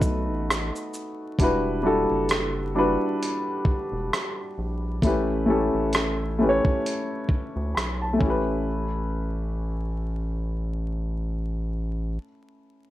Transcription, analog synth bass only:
Already playing: B1
0.29 A1
1.39 E1
2.11 F#1
3.92 E1
4.58 A#1
5.03 A1
5.74 A1
7.56 D2
7.76 B1
8.21 A1

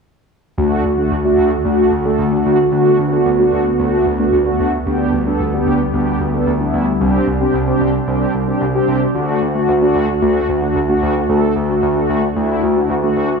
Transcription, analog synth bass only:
0.58 D2
0.85 D2
1.11 D2
1.38 D2
1.65 D2
1.92 D2
2.19 D2
2.46 D2
2.72 D2
2.99 D2
3.26 D2
3.52 D2
3.79 D2
4.06 D2
4.32 D2
4.60 D2
4.86 D2
5.13 D2
5.40 D2
5.66 D2
5.93 D2
6.20 D2
6.47 D2
6.74 D2
7.01 C2
7.27 C2
7.54 C2
7.81 C2
8.07 C2
8.34 C2
8.61 C2
8.88 C2
9.15 D2
9.42 D2
9.68 D2
9.95 D2
10.22 D2
10.49 D2
10.75 D2
11.02 D2
11.29 D2
11.56 D2
11.82 D2
12.09 D2
12.36 D2
12.63 D2
12.90 D2
13.17 D2

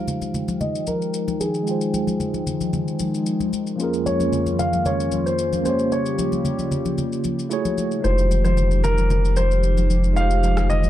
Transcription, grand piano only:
Already playing: F5
0.61 D#5
0.87 A#4
1.40 G#4
4.06 C#5
4.59 F5
4.86 C#5
5.26 C5
5.65 C5
5.92 C#5
8.04 C5
8.44 C5
8.84 A#4
9.37 C5
10.16 F5
10.70 D#5

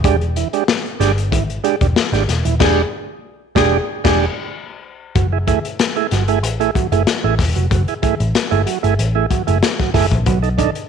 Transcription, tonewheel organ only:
0.04 G#3 D4 G4
0.37 E3
0.53 G#3 D4 G4
1.00 G#3 D4 G4
1.32 E3
1.64 G#3 D4 G4
1.81 D4 G4
2.13 G#3 D4 G4
2.45 E3
2.60 G#3 D4 G4
3.55 G#3 D4 G4
4.04 G#3 D4 G4
5.15 F#3
5.32 E4 G#4
5.47 A3 E4 G#4
5.96 A3 E4 G#4
6.12 F#3
6.28 A3 E4 G#4
6.60 A3 E4 G#4
6.75 F#3
6.92 A3 E4 G#4
7.24 A3 E4 G#4
7.56 F#3
7.70 F#3
7.88 E4 G#4
8.02 A3 E4 G#4
8.51 A3 E4 G#4
8.66 F#3
8.83 A3 E4 G#4
9.15 A3 E4 G#4
9.30 F#3
9.47 A3 E4 G#4
9.63 E4 G#4
9.80 F#3
9.94 A3 E4 G#4
10.26 B2 F#3
10.42 D#4 A4
10.58 D4 D#4 A4

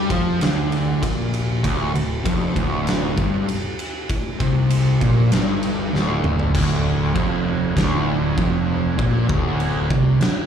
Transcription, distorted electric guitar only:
0.10 F3
0.42 D3
1.02 A#2
1.63 D2
1.94 D2
2.25 F2
2.55 D2
3.16 G2
4.40 C3
5.00 A#2
5.32 G2
5.93 D2
6.54 D2
7.15 F2
7.76 D2
8.38 F2
8.98 A#2
9.29 D2
9.90 C3
10.20 muted distorted electric guitar stroke

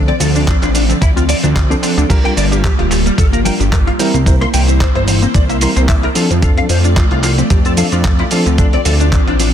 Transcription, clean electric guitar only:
0.08 D5
0.20 A4
0.35 D4
0.48 D4
0.63 D4
0.75 D4
0.89 D3
1.02 E4
1.16 F4
1.29 D5
1.43 D4
1.55 F4
1.70 C4
1.83 D4
1.98 D3
2.10 G4
2.25 G5
2.37 D5
2.52 G4
2.64 G4
2.79 G4
2.91 G4
3.06 G3
3.18 A4
3.33 A#4
3.45 G5
3.60 G4
3.72 A#4
3.87 F4
3.99 C5
4.14 C4
4.27 C5
4.41 C6
4.54 G5
4.69 C5
4.81 C5
4.96 C5
5.08 C5
5.23 C4
5.35 D5
5.50 E5
5.62 C6
5.77 C5
5.89 E5
6.04 A#4
6.16 F4
6.31 F3
6.43 F4
6.58 F5
6.70 C5
6.85 F4
6.97 F4
7.12 F4
7.23 F4
7.38 F3
7.50 G4
7.66 A4
7.78 F5
7.92 F4
8.05 A4
8.20 E4
8.31 F4
8.46 F3
8.58 D4
8.73 D5
8.85 A4
9.00 D4
9.12 D4
9.27 D4
9.40 D4

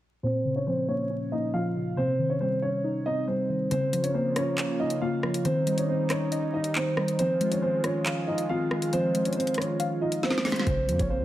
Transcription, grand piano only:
0.23 C4 C5
0.56 C#4 C#5
0.67 C4 C5
0.88 C#4 C#5
1.32 D#4 D#5
1.54 F4 F5
1.97 C4 C5
2.30 C#4 C#5
2.41 C4 C5
2.62 C#4 C#5
3.06 D#4 D#5
3.27 C4 C5
3.71 C4 C5
4.04 C#4 C#5
4.14 C4 C5
4.36 C#4 C#5
4.80 D#4 D#5
5.01 F4 F5
5.45 C4 C5
5.78 C#4 C#5
5.88 C4 C5
6.10 C#4 C#5
6.54 D#4 D#5
6.75 C4 C5
7.19 C4 C5
7.52 C#4 C#5
7.62 C4 C5
7.84 C#4 C#5
8.27 D#4 D#5
8.49 F4 F5
8.93 C4 C5
9.25 C#4 C#5
9.36 C4 C5
9.58 C#4 C#5
10.02 D#4 D#5
10.23 C4 C5
10.67 C4 C5
10.99 C#4 C#5
11.10 C4 C5

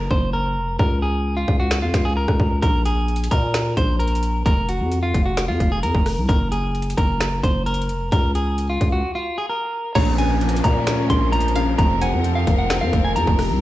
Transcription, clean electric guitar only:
0.11 C5
0.33 A#4
0.79 A#4
1.02 G#4
1.37 F4
1.60 F#4
1.82 F4
2.05 G#4
2.17 A#4
2.62 A#4
2.86 G#4
3.31 A#4
3.77 C5
4.00 A#4
4.46 A#4
4.69 F#4
5.03 F4
5.26 F#4
5.48 F4
5.72 G#4
5.83 A#4
6.29 A#4
6.52 G#4
6.97 A#4
7.43 C5
7.66 A#4
8.12 A#4
8.35 G#4
8.70 F4
8.92 F#4
9.15 F4
9.38 G#4
9.49 A#4
9.95 A#5
10.18 G#5
10.64 A#5
11.10 C6
11.32 A#5
11.78 A#5
12.02 F#5
12.35 F5
12.59 F#5
12.81 F5
13.05 G#5
13.16 A#5

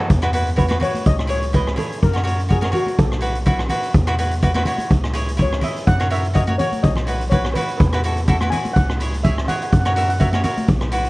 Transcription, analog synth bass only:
0.10 E2
1.06 C#2
2.03 F#2
2.99 B1
3.94 E2
4.91 C#2
5.87 F#2
6.84 B1
7.80 E2
8.76 C#2
9.72 F#2
10.68 B1

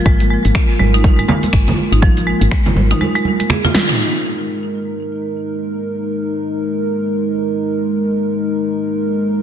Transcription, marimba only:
0.06 G#3
0.31 G#3
0.80 G#3
0.94 D#4
1.19 G#3
1.29 G#3
1.53 G#3
1.92 D#4
2.02 F3
2.27 G#3
2.52 G#3
2.91 D#4
3.01 G#3
3.15 G#3
3.40 G#3
3.50 G#4
3.65 F4
3.75 G#3
3.89 D#4

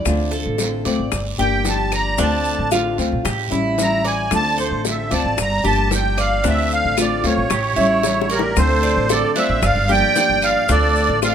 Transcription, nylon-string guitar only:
0.06 D3 A3 C4 F4
0.58 D3 A3 C4 F4
0.85 A3 C4 F4
1.12 muted nylon-string guitar stroke
1.38 F3 A#3 D4 G4
1.65 F3 A#3 D4 G4
2.17 D3 A3 C4 F4
2.71 D3 A3 C4 F4
2.98 A3 C4 F4
3.24 muted nylon-string guitar stroke
3.50 G3 C#4 E4
3.78 E3 G3 C#4 E4
4.31 D3 A3 C4 F4
4.85 D3 A3 C4 F4
5.11 A3 C4 F4
5.37 muted nylon-string guitar stroke
5.64 F3 A#3 D4 G4
5.90 F3 A#3 D4 G4
6.43 D3 A3 C4 F4
6.97 D3 A3 C4 F4
7.24 A3 C4 F4
7.50 muted nylon-string guitar stroke
7.76 G3 C#4 E4
8.03 E3 G3 C#4 E4
8.55 D3 A3 C4 F4
9.10 D3 A3 C4 F4
9.36 A3 C4 F4
9.62 muted nylon-string guitar stroke
9.89 F3 A#3 D4 G4
10.16 F3 A#3 D4 G4
10.69 D3 A3 C4 F4
11.22 D3 A3 C4 F4

